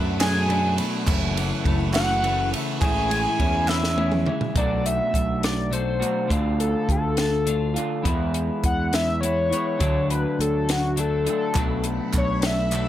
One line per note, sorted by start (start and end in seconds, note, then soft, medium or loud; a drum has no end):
0.00 0.78 F#2 medium
0.00 0.46 B2 medium
0.00 0.77 B2 medium
0.00 0.19 F#3 medium
0.00 0.22 F#3 medium
0.00 0.21 A3 medium
0.00 0.18 D4 medium
0.00 1.06 D4 medium
0.00 2.78 B4 medium
0.00 2.79 F#5 medium
0.00 1.07 B5 medium
0.19 0.47 F#3 medium
0.19 0.49 A3 medium
0.19 0.50 D4 medium
0.19 0.74 G#4 medium
0.19 0.75 G#5 loud
0.19 snare loud
0.19 clap medium
0.19 ride loud
0.36 clap soft
0.47 1.05 B2 medium
0.47 0.78 F#3 medium
0.47 0.77 A3 medium
0.47 0.75 D4 medium
0.47 clap soft
0.47 ride medium
0.76 1.07 B2 medium
0.76 1.06 F#3 medium
0.76 1.08 A3 medium
0.76 1.05 D4 medium
0.76 ride medium
1.06 1.51 F#1 medium
1.06 1.65 F#2 loud
1.06 1.64 C#3 loud
1.06 1.38 E3 loud
1.06 1.36 A3 loud
1.06 1.35 C#4 loud
1.06 4.54 E4 medium
1.06 kick loud
1.06 clap medium
1.06 crash loud
1.10 4.54 C#6 medium
1.36 1.66 E3 medium
1.36 1.67 A3 medium
1.36 1.68 C#4 medium
1.36 ride medium
1.64 2.53 F#1 medium
1.64 2.22 C#3 medium
1.64 1.95 E3 medium
1.64 2.22 A3 medium
1.64 kick medium
1.64 ride medium
1.68 1.95 A3 medium
1.68 1.92 C#4 medium
1.93 2.23 E3 medium
1.93 2.24 A3 medium
1.93 2.24 C#4 medium
1.93 2.48 F#4 medium
1.93 2.49 F#5 loud
1.93 snare loud
1.93 clap medium
1.93 ride medium
2.09 clap soft
2.23 2.80 C#3 medium
2.23 2.54 E3 medium
2.23 2.53 A3 medium
2.23 2.51 C#4 medium
2.23 clap soft
2.23 ride medium
2.52 2.81 C#3 medium
2.52 2.81 E3 medium
2.52 2.83 A3 medium
2.52 2.80 C#4 medium
2.52 ride medium
2.80 3.25 A1 loud
2.80 3.40 A2 medium
2.80 3.37 E3 medium
2.80 3.12 G#3 loud
2.80 3.10 C#4 loud
2.80 3.09 E4 loud
2.80 3.65 G#4 loud
2.80 4.54 G#4 medium
2.80 4.54 G#5 medium
2.80 3.69 G#5 loud
2.80 kick loud
2.80 clap medium
2.80 ride loud
2.97 clap soft
3.10 3.39 G#3 medium
3.10 3.39 C#4 medium
3.10 3.40 E4 medium
3.10 clap soft
3.10 ride medium
3.26 clap soft
3.38 4.28 E2 medium
3.38 3.95 E3 medium
3.38 3.69 G#3 medium
3.38 3.66 C#4 medium
3.38 3.65 E4 medium
3.38 kick medium
3.38 ride medium
3.54 clap soft
3.67 3.96 G#3 medium
3.67 3.97 C#4 medium
3.67 3.98 E4 medium
3.67 4.34 E5 loud
3.67 snare medium
3.67 clap medium
3.72 4.36 E4 medium
3.84 snare medium
3.84 clap soft
3.96 4.53 E3 medium
3.96 4.28 G#3 medium
3.96 4.26 C#4 medium
3.96 4.25 E4 medium
3.96 high tom medium
4.12 clap soft
4.12 mid tom medium
4.26 4.56 E3 medium
4.26 4.55 G#3 medium
4.26 4.55 C#4 medium
4.26 4.54 E4 medium
4.26 clap soft
4.26 mid tom medium
4.41 floor tom medium
4.55 5.00 B1 medium
4.55 5.69 B2 medium
4.55 5.70 F#3 medium
4.55 5.71 A3 medium
4.55 5.72 D4 medium
4.55 5.72 F#4 medium
4.55 4.85 D5 medium
4.55 kick loud
4.55 closed hi-hat medium
4.86 5.42 E5 loud
4.86 closed hi-hat medium
5.14 6.02 B1 medium
5.14 kick medium
5.14 closed hi-hat medium
5.43 5.72 D5 medium
5.43 snare loud
5.43 closed hi-hat medium
5.71 6.28 B2 medium
5.71 6.28 F#3 medium
5.71 6.28 A3 medium
5.71 6.30 D4 medium
5.71 6.30 F#4 medium
5.71 6.29 C5 medium
5.71 closed hi-hat medium
6.00 6.30 B2 medium
6.00 6.27 F#3 medium
6.00 6.28 A3 medium
6.00 6.28 D4 medium
6.00 6.28 F#4 medium
6.00 closed hi-hat medium
6.28 6.74 D2 medium
6.28 7.44 D3 medium
6.28 7.45 A3 medium
6.28 7.46 D4 medium
6.28 7.46 F4 medium
6.28 kick loud
6.28 closed hi-hat medium
6.60 6.88 A4 medium
6.60 closed hi-hat medium
6.89 7.76 D2 medium
6.89 8.04 A4 loud
6.89 kick medium
6.89 closed hi-hat medium
7.17 snare loud
7.17 closed hi-hat medium
7.46 8.03 D3 medium
7.46 8.04 A3 medium
7.46 8.04 D4 medium
7.46 8.05 F4 medium
7.46 closed hi-hat medium
7.74 8.02 D3 medium
7.74 8.04 A3 medium
7.74 8.04 D4 medium
7.74 8.03 F4 medium
7.74 closed hi-hat medium
8.04 8.49 E2 medium
8.04 9.19 E3 medium
8.04 9.20 G#3 loud
8.04 9.21 B3 medium
8.04 9.21 E4 medium
8.04 kick loud
8.04 closed hi-hat medium
8.34 closed hi-hat medium
8.64 9.51 E2 medium
8.64 8.93 F#5 medium
8.64 kick medium
8.64 closed hi-hat medium
8.93 9.20 E5 medium
8.93 snare loud
8.93 closed hi-hat medium
9.21 9.78 E3 medium
9.21 9.79 G#3 medium
9.21 9.79 B3 medium
9.21 9.80 E4 medium
9.21 10.06 C#5 medium
9.21 closed hi-hat medium
9.50 9.80 G#3 medium
9.50 9.79 B3 medium
9.50 9.78 E4 medium
9.50 closed hi-hat medium
9.55 9.77 E3 medium
9.79 10.25 D2 medium
9.79 10.95 D3 medium
9.79 10.95 F#3 medium
9.79 10.98 A3 medium
9.79 10.99 D4 medium
9.79 kick loud
9.79 closed hi-hat medium
10.10 10.39 B4 medium
10.10 closed hi-hat medium
10.39 11.27 D2 medium
10.39 10.68 A4 medium
10.39 closed hi-hat medium
10.69 10.98 F#4 medium
10.69 snare loud
10.69 closed hi-hat medium
10.96 11.53 D3 medium
10.96 11.54 F#3 medium
10.96 11.58 A3 medium
10.96 11.58 D4 medium
10.96 11.27 A4 medium
10.96 closed hi-hat medium
11.25 11.53 D3 medium
11.25 11.54 F#3 medium
11.25 11.56 A3 medium
11.25 11.57 D4 medium
11.25 closed hi-hat medium
11.30 11.85 A4 loud
11.55 11.99 B1 medium
11.55 12.70 B2 medium
11.55 12.71 F#3 medium
11.55 12.72 A3 loud
11.55 12.88 D4 medium
11.55 12.72 D4 medium
11.55 12.88 A4 medium
11.55 12.88 F#5 medium
11.55 12.88 B5 medium
11.55 kick loud
11.55 clap medium
11.55 closed hi-hat medium
11.84 closed hi-hat medium
12.13 12.88 B1 medium
12.13 kick medium
12.13 clap medium
12.13 closed hi-hat medium
12.18 12.44 C#5 loud
12.42 12.88 E5 medium
12.42 snare loud
12.42 closed hi-hat medium
12.59 clap soft
12.71 12.88 B2 medium
12.71 12.88 F#3 medium
12.71 12.88 A3 medium
12.71 clap medium
12.71 closed hi-hat medium
12.76 12.88 D4 medium